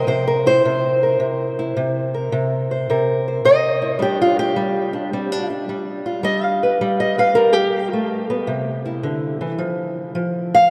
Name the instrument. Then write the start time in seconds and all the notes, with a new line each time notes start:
steel-string acoustic guitar
Already playing: A#4
0.07 C3 C5
0.27 A#4
0.46 E4 C5
0.65 C3
1.03 A#4
1.20 C3
1.59 E4
1.77 C3
2.14 A#4
2.32 C3
2.71 C5
2.90 C3 A#4
3.28 C5
3.45 C3 D#5
3.82 E4
3.99 G3 D4 G4
4.22 F4
4.39 G4
4.56 G3
4.93 D4
5.13 G3 C4
5.32 D4
5.50 D4
5.69 G3
6.06 F4
6.23 G3 D#5
6.43 F5
6.63 B4
6.81 G3
7.00 D#5
7.18 B4 F5
7.35 G3 A#4
7.53 G4
7.93 A3
8.30 B3
8.47 C3
8.86 E4
9.03 D3
9.41 E3
9.58 F3
10.15 F3
10.55 F5